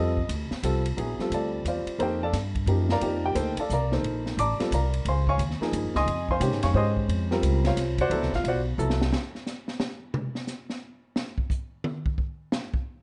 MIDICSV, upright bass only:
0, 0, Header, 1, 3, 480
1, 0, Start_track
1, 0, Tempo, 339367
1, 1385, Time_signature, 3, 2, 24, 8
1, 18423, End_track
2, 0, Start_track
2, 0, Title_t, "Upright bass"
2, 0, Program_c, 0, 32
2, 0, Note_on_c, 0, 41, 93
2, 401, Note_off_c, 0, 41, 0
2, 408, Note_on_c, 0, 38, 100
2, 701, Note_off_c, 0, 38, 0
2, 887, Note_on_c, 0, 36, 93
2, 1361, Note_off_c, 0, 36, 0
2, 1375, Note_on_c, 0, 34, 86
2, 1665, Note_off_c, 0, 34, 0
2, 1841, Note_on_c, 0, 38, 92
2, 2318, Note_off_c, 0, 38, 0
2, 2330, Note_on_c, 0, 40, 91
2, 2622, Note_off_c, 0, 40, 0
2, 2808, Note_on_c, 0, 41, 81
2, 3282, Note_off_c, 0, 41, 0
2, 3294, Note_on_c, 0, 43, 96
2, 3756, Note_off_c, 0, 43, 0
2, 3765, Note_on_c, 0, 42, 98
2, 4240, Note_off_c, 0, 42, 0
2, 4260, Note_on_c, 0, 41, 92
2, 4728, Note_off_c, 0, 41, 0
2, 4736, Note_on_c, 0, 38, 94
2, 5026, Note_off_c, 0, 38, 0
2, 5227, Note_on_c, 0, 36, 98
2, 5692, Note_off_c, 0, 36, 0
2, 5698, Note_on_c, 0, 34, 83
2, 6167, Note_off_c, 0, 34, 0
2, 6184, Note_on_c, 0, 33, 94
2, 6470, Note_off_c, 0, 33, 0
2, 6662, Note_on_c, 0, 36, 88
2, 7130, Note_off_c, 0, 36, 0
2, 7144, Note_on_c, 0, 37, 93
2, 7601, Note_off_c, 0, 37, 0
2, 7609, Note_on_c, 0, 39, 92
2, 7903, Note_off_c, 0, 39, 0
2, 8099, Note_on_c, 0, 43, 96
2, 8259, Note_on_c, 0, 41, 57
2, 8280, Note_off_c, 0, 43, 0
2, 8405, Note_off_c, 0, 41, 0
2, 8413, Note_on_c, 0, 37, 67
2, 8568, Note_off_c, 0, 37, 0
2, 8576, Note_on_c, 0, 41, 91
2, 9046, Note_off_c, 0, 41, 0
2, 9057, Note_on_c, 0, 48, 99
2, 9217, Note_off_c, 0, 48, 0
2, 9217, Note_on_c, 0, 44, 63
2, 9376, Note_off_c, 0, 44, 0
2, 9385, Note_on_c, 0, 41, 76
2, 9522, Note_off_c, 0, 41, 0
2, 9531, Note_on_c, 0, 44, 101
2, 10004, Note_off_c, 0, 44, 0
2, 10014, Note_on_c, 0, 41, 86
2, 10486, Note_off_c, 0, 41, 0
2, 10494, Note_on_c, 0, 37, 96
2, 10966, Note_off_c, 0, 37, 0
2, 10980, Note_on_c, 0, 36, 94
2, 11443, Note_off_c, 0, 36, 0
2, 11452, Note_on_c, 0, 38, 100
2, 11613, Note_off_c, 0, 38, 0
2, 11613, Note_on_c, 0, 36, 61
2, 11772, Note_off_c, 0, 36, 0
2, 11780, Note_on_c, 0, 33, 73
2, 11927, Note_off_c, 0, 33, 0
2, 11935, Note_on_c, 0, 35, 94
2, 12407, Note_off_c, 0, 35, 0
2, 12417, Note_on_c, 0, 36, 102
2, 12887, Note_off_c, 0, 36, 0
2, 18423, End_track
3, 0, Start_track
3, 0, Title_t, "Muted upright bass strokes"
3, 715, Note_on_c, 9, 29, 46
3, 856, Note_off_c, 9, 29, 0
3, 1679, Note_on_c, 9, 29, 36
3, 1821, Note_off_c, 9, 29, 0
3, 2631, Note_on_c, 9, 29, 37
3, 2773, Note_off_c, 9, 29, 0
3, 5053, Note_on_c, 9, 29, 45
3, 5194, Note_off_c, 9, 29, 0
3, 6486, Note_on_c, 9, 29, 40
3, 6628, Note_off_c, 9, 29, 0
3, 7925, Note_on_c, 9, 29, 42
3, 8066, Note_off_c, 9, 29, 0
3, 18423, End_track
0, 0, End_of_file